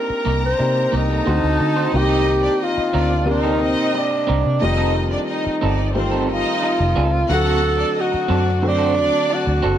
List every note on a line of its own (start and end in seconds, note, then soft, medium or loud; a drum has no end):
0.00 0.51 A#3 medium
0.00 0.52 C4 medium
0.00 0.52 D4 medium
0.00 0.53 D#4 medium
0.00 0.53 G4 medium
0.00 0.44 A#4 medium
0.00 1.23 A#4 medium
0.00 1.23 A#5 medium
0.09 muted clean electric guitar stroke soft
0.09 muted fingered electric bass stroke soft
0.25 0.53 C2 medium
0.25 0.44 A#3 medium
0.25 0.42 D#4 medium
0.25 0.42 G4 medium
0.43 0.91 C5 loud
0.43 muted clean electric guitar stroke soft
0.58 0.86 C3 loud
0.58 1.26 A#3 medium
0.58 1.25 C4 medium
0.58 1.26 D#4 medium
0.58 1.27 G4 medium
0.58 1.26 D5 medium
0.58 muted clean electric guitar stroke soft
0.76 muted clean electric guitar stroke soft
0.92 1.20 C2 medium
0.92 1.07 A#3 medium
0.92 1.07 D#4 soft
0.92 1.98 D#4 loud
0.92 1.07 G4 medium
1.09 1.25 A#3 medium
1.09 1.24 D#4 medium
1.09 1.24 A4 medium
1.25 1.40 D2 medium
1.25 1.90 D3 medium
1.25 1.90 A3 medium
1.25 1.90 C4 medium
1.25 1.44 D#4 medium
1.25 1.90 D#4 medium
1.25 1.45 F#4 medium
1.25 1.91 F#4 loud
1.25 1.92 A4 medium
1.25 1.45 C5 medium
1.25 1.92 A5 medium
1.44 1.57 D2 medium
1.60 1.87 D3 medium
1.60 muted clean electric guitar stroke soft
1.76 1.91 D#4 soft
1.76 1.91 F#4 soft
1.76 1.91 C5 medium
1.91 2.47 C2 loud
1.91 3.20 D#3 medium
1.91 3.20 A#3 medium
1.91 3.20 C4 medium
1.91 2.40 D#4 loud
1.91 3.21 D#4 medium
1.91 3.21 G4 medium
1.91 2.40 D#5 loud
1.91 muted clean electric guitar stroke soft
1.96 2.64 G4 loud
2.09 2.25 C4 medium
2.09 2.25 D#4 medium
2.09 2.26 A#4 medium
2.26 muted clean electric guitar stroke soft
2.43 2.57 D4 medium
2.43 2.57 D5 medium
2.43 muted clean electric guitar stroke soft
2.61 2.87 D#4 medium
2.61 3.29 F4 loud
2.61 2.87 D#5 medium
2.77 muted clean electric guitar stroke soft
2.77 muted fingered electric bass stroke soft
2.93 3.74 D2 medium
2.93 3.12 C4 medium
2.93 3.21 D4 medium
2.93 3.09 D#4 medium
2.93 3.08 A#4 medium
2.93 3.21 D5 medium
3.10 muted clean electric guitar stroke soft
3.25 4.53 C3 medium
3.25 4.54 A#3 medium
3.25 4.54 C4 medium
3.25 3.54 C4 medium
3.25 4.55 A#4 medium
3.25 3.54 C5 medium
3.25 muted clean electric guitar stroke soft
3.31 3.99 D#4 loud
3.44 3.59 C4 medium
3.44 3.60 D#4 medium
3.44 3.60 A#4 medium
3.60 4.24 C4 medium
3.60 4.24 D#5 loud
3.60 muted clean electric guitar stroke soft
3.77 muted clean electric guitar stroke soft
3.94 4.67 D4 medium
3.94 muted clean electric guitar stroke soft
4.11 muted clean electric guitar stroke soft
4.27 4.42 C2 medium
4.27 4.46 C4 medium
4.27 4.44 D#4 medium
4.27 4.43 A#4 medium
4.44 4.59 C3 medium
4.44 muted clean electric guitar stroke soft
4.61 5.16 F1 loud
4.61 5.88 D#3 medium
4.61 5.88 G3 medium
4.61 5.89 A3 medium
4.61 5.89 C4 medium
4.61 5.09 D#4 medium
4.61 5.89 F4 medium
4.61 5.08 D#5 loud
4.61 muted clean electric guitar stroke soft
4.65 5.03 D#4 medium
4.77 4.93 C4 medium
4.77 4.93 D#4 medium
4.77 4.94 A4 medium
4.94 muted clean electric guitar stroke soft
5.11 5.25 D4 medium
5.11 5.25 D5 medium
5.11 muted clean electric guitar stroke soft
5.28 5.55 D#4 medium
5.28 5.93 D#4 medium
5.28 5.55 D#5 medium
5.44 muted clean electric guitar stroke soft
5.44 muted fingered electric bass stroke soft
5.61 6.42 G1 medium
5.61 5.80 C4 medium
5.61 5.89 D#4 medium
5.61 5.78 D#4 medium
5.61 5.77 A4 medium
5.61 5.89 D5 medium
5.78 muted clean electric guitar stroke soft
5.94 7.22 D#3 medium
5.94 7.22 G3 medium
5.94 7.22 A3 medium
5.94 6.22 C4 medium
5.94 7.23 C4 medium
5.94 7.23 F4 medium
5.94 6.23 C5 loud
5.94 muted clean electric guitar stroke soft
6.12 6.27 C4 medium
6.12 6.28 D#4 medium
6.12 6.28 A4 medium
6.29 6.92 D#4 loud
6.29 7.35 F4 loud
6.29 6.92 D#5 loud
6.29 muted clean electric guitar stroke soft
6.46 muted clean electric guitar stroke soft
6.62 muted clean electric guitar stroke soft
6.79 6.93 F1 medium
6.79 muted clean electric guitar stroke soft
6.96 7.23 C#2 medium
6.96 7.16 C4 medium
6.96 7.12 D#4 medium
6.96 7.11 A4 medium
7.12 muted clean electric guitar stroke soft
7.29 7.83 D2 medium
7.29 8.56 D3 medium
7.29 8.57 F#3 medium
7.29 8.57 A3 medium
7.29 8.57 C4 medium
7.29 7.77 F#4 loud
7.29 8.58 F#4 medium
7.29 7.77 F#5 loud
7.29 muted clean electric guitar stroke soft
7.34 8.02 A4 loud
7.45 7.61 C4 medium
7.45 7.62 F#4 medium
7.45 7.62 A4 medium
7.62 muted clean electric guitar stroke soft
7.78 7.93 D4 medium
7.78 7.93 D5 loud
7.78 muted clean electric guitar stroke soft
7.97 8.23 D#4 medium
7.97 8.23 D#5 medium
8.01 8.65 F#4 loud
8.12 muted clean electric guitar stroke soft
8.12 muted fingered electric bass stroke soft
8.28 9.09 F#2 medium
8.28 8.47 C4 medium
8.28 8.57 D4 medium
8.28 8.46 F#4 medium
8.28 8.44 A4 medium
8.28 8.57 D5 medium
8.46 muted clean electric guitar stroke soft
8.62 9.78 D3 medium
8.62 9.78 F#3 medium
8.62 9.78 A3 medium
8.62 8.90 C4 medium
8.62 9.78 C4 medium
8.62 9.78 F#4 medium
8.62 8.90 C5 loud
8.62 muted clean electric guitar stroke soft
8.68 9.35 D4 medium
8.78 8.94 C4 medium
8.78 8.95 F#4 medium
8.78 8.96 A4 medium
8.96 9.60 D4 loud
8.96 9.59 D5 loud
8.96 muted clean electric guitar stroke soft
9.13 muted clean electric guitar stroke soft
9.30 muted clean electric guitar stroke soft
9.34 9.78 F#4 loud
9.46 9.60 D2 medium
9.46 muted clean electric guitar stroke soft
9.62 9.78 F#1 medium
9.62 9.78 C4 medium
9.62 9.78 F#4 medium
9.62 9.78 A4 medium